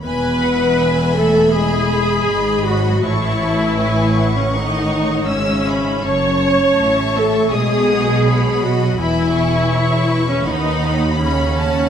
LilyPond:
<<
  \new Staff \with { instrumentName = "Violin section" } { \time 4/4 \key e \major \tempo 4 = 81 b''4 b''2. | cis'''4 cis'''2 e'''8 b''8 | cis'''4 cis'''4 dis'''4 b''4 | b''8 cis'''4. b''2 | }
  \new Staff \with { instrumentName = "Violin section" } { \time 4/4 \key e \major << { gis''8 fis''8 gis''4 gis''8 b''8 b''4 | a''4 gis''8 fis''4. e''4 | a''2 gis''8 fis''8 fis''4 | gis''4 e''4 fis''4 b''8 a''8 | } \\ { e''2. dis''8 dis''8 | cis''8 b'4. cis''2~ | cis''4 e''4 dis''4 cis''8 dis''8 | e''4 cis''8 b'8 b'8 cis''8 fis''4 | } >> }
  \new Staff \with { instrumentName = "Viola section" } { \time 4/4 \key e \major b'4. a'8 gis'4. fis'8 | e'4.~ e'16 cis'16 dis'4 cis'4 | cis''4. a'8 gis'4. fis'8 | e'4.~ e'16 cis'16 dis'4 cis'4 | }
  \new Staff \with { instrumentName = "French horn section" } { \clef bass \time 4/4 \key e \major b4. a8 gis4. fis8 | e4.~ e16 cis16 dis4 cis4 | cis'4. a8 gis4. fis8 | e4.~ e16 cis16 dis4 cis4 | }
  \new Staff \with { instrumentName = "Cello section" } { \clef bass \time 4/4 \key e \major e,2. gis,4 | a,2. gis,4 | fis,4 a,4 b,2 | e,2 dis,2 | }
  \new Staff \with { instrumentName = "Double bass section" } { \clef bass \time 4/4 \key e \major e,,2. gis,,4 | a,,2. gis,,4 | fis,,4 a,,4 b,,2 | e,,2 dis,2 | }
>>